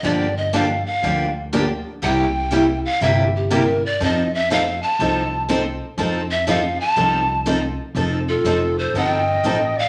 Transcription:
0.03 0.82 G1 medium
0.03 0.26 D3 medium
0.03 0.26 F3 medium
0.03 0.26 A#3 medium
0.03 0.26 D4 medium
0.03 0.26 G4 medium
0.03 0.39 D5 medium
0.37 0.56 D#5 medium
0.53 0.65 D3 medium
0.53 0.65 F3 medium
0.53 0.65 A#3 medium
0.53 0.65 D4 medium
0.53 0.65 G4 medium
0.53 0.85 F5 medium
0.86 1.32 F5 medium
1.02 1.82 D2 medium
1.02 1.25 D3 medium
1.02 1.25 F3 medium
1.02 1.25 A#3 medium
1.02 1.26 D4 medium
1.02 1.26 G4 medium
1.53 1.64 D3 medium
1.53 1.64 F3 medium
1.53 1.64 A#3 medium
1.53 1.65 D4 medium
1.53 1.65 G4 medium
2.02 2.81 C2 medium
2.02 2.24 C3 medium
2.02 2.25 G3 medium
2.02 2.25 A#3 medium
2.02 2.25 E4 medium
2.02 2.25 G4 medium
2.02 2.80 G5 medium
2.52 2.63 C3 medium
2.52 2.63 G3 medium
2.52 2.63 A#3 medium
2.52 2.64 E4 medium
2.52 2.64 G4 medium
2.85 3.05 F5 loud
3.01 3.80 G1 medium
3.01 3.23 C3 medium
3.01 3.23 G3 medium
3.01 3.24 A#3 medium
3.01 3.24 E4 medium
3.01 3.24 G4 medium
3.01 3.34 E5 medium
3.36 3.55 G4 medium
3.50 3.62 C3 medium
3.50 3.62 G3 medium
3.50 3.62 A#3 medium
3.50 3.62 E4 medium
3.50 3.63 G4 loud
3.50 3.84 A#4 medium
3.86 4.05 D5 medium
4.00 4.79 F2 medium
4.00 4.22 F3 medium
4.00 4.22 C4 medium
4.00 4.23 D#4 medium
4.00 4.23 A4 medium
4.00 4.33 D#5 medium
4.35 4.53 E5 medium
4.50 4.61 F3 medium
4.50 4.62 C4 medium
4.50 4.62 D#4 medium
4.50 4.62 A4 medium
4.50 4.82 F5 medium
4.83 5.45 A5 medium
4.99 5.78 C2 medium
4.99 5.21 F3 medium
4.99 5.22 C4 medium
4.99 5.22 D#4 medium
4.99 5.22 A4 medium
5.49 5.60 F3 medium
5.49 5.60 C4 medium
5.49 5.61 D#4 medium
5.49 5.61 A4 loud
5.97 6.77 F2 medium
5.97 6.20 F3 medium
5.97 6.20 C4 medium
5.97 6.20 D#4 medium
5.97 6.21 A4 medium
6.31 6.50 E5 medium
6.47 6.59 F3 medium
6.47 6.59 C4 medium
6.47 6.59 D#4 medium
6.47 6.59 A4 medium
6.47 6.82 F5 medium
6.80 7.47 A5 loud
6.97 7.76 C2 medium
6.97 7.19 F3 medium
6.97 7.19 C4 medium
6.97 7.19 D#4 medium
6.97 7.19 A4 medium
7.46 7.58 F3 medium
7.46 7.58 C4 medium
7.46 7.58 D#4 medium
7.46 7.59 A4 medium
7.95 8.35 F1 medium
7.95 8.18 F3 medium
7.95 8.18 C4 medium
7.95 8.18 D#4 medium
7.95 8.18 A4 medium
8.28 8.80 F4 medium
8.28 8.80 A4 medium
8.44 8.87 F1 medium
8.44 8.57 F3 medium
8.44 8.57 C4 medium
8.44 8.57 D#4 medium
8.44 8.58 A4 medium
8.78 8.99 A4 medium
8.78 8.98 C5 medium
8.94 9.36 G1 medium
8.94 9.17 F3 medium
8.94 9.17 C4 medium
8.94 9.18 D#4 medium
8.94 9.18 A4 medium
8.94 9.79 D#5 medium
8.94 9.09 F#5 medium
9.09 9.80 G5 medium
9.43 9.86 A1 medium
9.43 9.56 F3 medium
9.43 9.56 C4 medium
9.43 9.57 D#4 medium
9.43 9.57 A4 medium
9.77 9.88 D5 medium
9.77 9.88 F5 loud

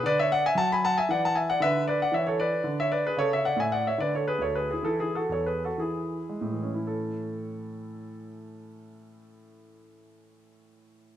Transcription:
0.03 0.44 D3 medium
0.03 0.17 B4 medium
0.03 0.18 D5 loud
0.19 0.31 C#5 medium
0.19 0.31 E5 medium
0.32 0.43 D5 medium
0.32 0.44 F#5 loud
0.46 0.57 E5 medium
0.46 0.57 G#5 loud
0.55 0.97 F#3 medium
0.55 0.69 F#5 medium
0.55 0.69 A5 loud
0.72 0.83 G#5 medium
0.72 0.83 B5 medium
0.85 0.95 F#5 medium
0.85 0.96 A5 loud
0.98 1.09 E5 medium
0.98 1.09 G#5 medium
1.09 1.50 E3 medium
1.09 1.22 D5 medium
1.09 1.22 F#5 medium
1.25 1.35 F#5 medium
1.25 1.36 A5 loud
1.35 1.47 E5 medium
1.35 1.47 G#5 medium
1.50 1.61 D5 medium
1.50 1.61 F#5 loud
1.60 2.01 D3 medium
1.60 1.85 B4 medium
1.60 1.83 E5 loud
1.88 1.99 B4 medium
1.88 1.99 D5 medium
2.02 2.13 D5 medium
2.02 2.13 F#5 medium
2.12 2.53 E3 medium
2.12 2.25 C#5 medium
2.12 2.25 E5 medium
2.27 2.38 A4 medium
2.27 2.38 C#5 medium
2.40 2.75 B4 medium
2.40 2.77 D5 medium
2.64 3.05 D3 medium
2.80 2.91 C#5 medium
2.80 2.91 E5 medium
2.92 3.03 B4 medium
2.92 3.03 D5 medium
3.07 3.18 G#4 medium
3.07 3.18 B4 medium
3.17 3.49 C#3 medium
3.17 3.30 A4 medium
3.17 3.30 C#5 loud
3.33 3.44 C#5 medium
3.33 3.45 E5 medium
3.45 3.57 D5 medium
3.45 3.57 F#5 medium
3.56 3.89 A2 medium
3.56 3.72 G#5 medium
3.61 3.71 E5 medium
3.72 3.84 D5 medium
3.72 3.85 F#5 medium
3.87 3.99 C#5 medium
3.87 3.99 E5 medium
3.98 4.32 D3 medium
3.98 4.12 B4 medium
3.98 4.13 D5 medium
4.15 4.27 A4 medium
4.15 4.27 C#5 medium
4.28 4.40 G#4 medium
4.28 4.41 B4 medium
4.38 4.74 D2 soft
4.38 4.55 C#5 medium
4.44 4.55 A4 medium
4.55 4.69 G#4 medium
4.55 4.69 B4 medium
4.71 4.84 E4 medium
4.71 4.85 G#4 medium
4.83 5.20 E3 medium
4.83 4.99 E4 medium
4.83 4.99 A4 medium
5.00 5.15 E4 medium
5.00 5.15 G#4 medium
5.15 5.30 F#4 medium
5.15 5.31 A4 medium
5.29 5.68 E2 soft
5.29 5.47 C#5 medium
5.33 5.47 A4 soft
5.46 5.62 G#4 medium
5.46 5.62 B4 medium
5.65 5.79 F#4 soft
5.65 5.80 A4 medium
5.78 6.19 E3 soft
5.78 6.73 E4 soft
5.78 6.70 G#4 medium
6.29 6.74 G#3 soft
6.41 9.72 A2 soft
6.52 9.83 E3 soft
6.63 9.94 C#4 soft
6.74 10.05 E4 soft
6.87 10.18 A4 medium

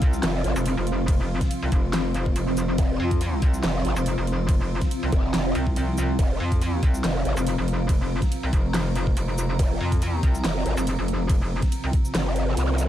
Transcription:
0.00 0.22 C2 loud
0.00 12.88 C3 medium
0.00 12.88 F3 medium
0.00 12.88 C4 medium
0.00 12.88 F4 medium
0.00 2.77 F5 medium
0.00 12.88 F5 medium
0.00 6.50 C6 loud
0.00 kick loud
0.00 closed hi-hat medium
0.13 shaker medium
0.23 0.43 F1 medium
0.23 snare loud
0.23 clap medium
0.23 closed hi-hat medium
0.23 ride medium
0.44 0.54 G#1 loud
0.44 closed hi-hat medium
0.56 0.75 F1 loud
0.56 shaker medium
0.66 closed hi-hat medium
0.66 ride soft
0.77 1.39 F1 loud
0.87 closed hi-hat medium
1.08 kick loud
1.08 closed hi-hat medium
1.08 ride medium
1.41 kick medium
1.41 snare soft
1.41 closed hi-hat medium
1.51 closed hi-hat medium
1.51 ride soft
1.62 1.71 C2 loud
1.72 2.34 F1 loud
1.72 kick loud
1.72 closed hi-hat medium
1.93 snare loud
1.93 clap medium
1.93 closed hi-hat medium
1.93 ride medium
2.14 closed hi-hat medium
2.26 kick medium
2.36 2.77 F1 medium
2.36 closed hi-hat medium
2.36 ride soft
2.57 closed hi-hat medium
2.57 shaker medium
2.78 2.98 F1 loud
2.78 6.18 A#5 medium
2.78 kick loud
2.78 closed hi-hat medium
2.78 ride medium
3.00 3.41 F2 loud
3.11 kick medium
3.11 closed hi-hat medium
3.21 closed hi-hat medium
3.21 ride soft
3.42 3.62 C2 loud
3.42 kick loud
3.42 closed hi-hat medium
3.54 shaker medium
3.63 3.83 F1 loud
3.63 snare loud
3.63 clap loud
3.63 closed hi-hat medium
3.63 ride medium
3.85 3.95 G#1 loud
3.85 closed hi-hat medium
3.96 4.16 F1 loud
3.96 shaker medium
4.06 closed hi-hat medium
4.06 ride soft
4.18 4.80 F1 medium
4.27 closed hi-hat medium
4.49 kick loud
4.49 closed hi-hat medium
4.49 ride medium
4.81 kick medium
4.81 snare soft
4.81 closed hi-hat medium
4.91 closed hi-hat medium
4.91 ride soft
5.03 5.11 C2 loud
5.12 5.32 F1 loud
5.12 kick loud
5.12 closed hi-hat medium
5.34 5.54 F1 loud
5.34 snare loud
5.34 clap medium
5.34 closed hi-hat medium
5.34 ride medium
5.55 6.17 C2 medium
5.55 closed hi-hat medium
5.67 kick medium
5.76 closed hi-hat medium
5.76 ride soft
5.98 closed hi-hat medium
5.98 shaker medium
6.19 6.39 F1 medium
6.19 9.58 F5 medium
6.19 kick loud
6.19 closed hi-hat medium
6.19 ride medium
6.40 6.81 F2 loud
6.48 12.88 A#5 medium
6.52 kick medium
6.52 closed hi-hat medium
6.61 closed hi-hat medium
6.61 ride soft
6.83 7.02 C2 loud
6.83 kick loud
6.83 closed hi-hat medium
6.94 shaker medium
7.04 7.24 F1 loud
7.04 snare loud
7.04 clap medium
7.04 closed hi-hat medium
7.04 ride medium
7.25 7.35 G#1 loud
7.25 closed hi-hat medium
7.37 7.56 F1 loud
7.37 shaker medium
7.47 closed hi-hat medium
7.47 ride soft
7.58 8.20 F1 medium
7.68 closed hi-hat medium
7.89 kick loud
7.89 closed hi-hat medium
7.89 ride medium
8.22 kick medium
8.22 snare soft
8.22 closed hi-hat medium
8.32 closed hi-hat medium
8.32 ride soft
8.43 8.51 C2 loud
8.53 9.15 F1 loud
8.53 kick loud
8.53 closed hi-hat medium
8.74 snare loud
8.74 clap medium
8.74 closed hi-hat medium
8.74 ride medium
8.96 closed hi-hat medium
9.07 kick medium
9.17 9.58 F1 loud
9.17 closed hi-hat medium
9.17 ride soft
9.38 closed hi-hat medium
9.38 shaker medium
9.59 9.79 F1 medium
9.59 12.88 A#5 medium
9.59 kick loud
9.59 closed hi-hat medium
9.59 ride medium
9.81 10.22 F2 loud
9.92 kick medium
9.92 closed hi-hat medium
10.02 closed hi-hat medium
10.02 ride soft
10.23 10.43 C2 loud
10.23 kick loud
10.23 closed hi-hat medium
10.35 shaker medium
10.44 10.64 F1 loud
10.44 snare loud
10.44 clap medium
10.44 closed hi-hat medium
10.44 ride medium
10.66 10.75 G#1 loud
10.66 closed hi-hat medium
10.77 10.97 F1 loud
10.77 shaker medium
10.87 closed hi-hat medium
10.87 ride medium
10.99 11.61 F1 loud
11.08 closed hi-hat medium
11.29 kick loud
11.29 closed hi-hat medium
11.29 ride medium
11.62 kick medium
11.62 snare soft
11.62 closed hi-hat medium
11.72 closed hi-hat medium
11.72 ride soft
11.84 11.92 C2 loud
11.93 kick loud
11.93 closed hi-hat medium
12.05 shaker medium
12.15 12.56 G1 loud
12.15 snare loud
12.15 clap loud
12.15 closed hi-hat medium
12.15 ride medium
12.36 closed hi-hat medium
12.57 12.88 C2 loud
12.57 closed hi-hat medium
12.57 ride soft
12.78 closed hi-hat medium
12.78 shaker medium

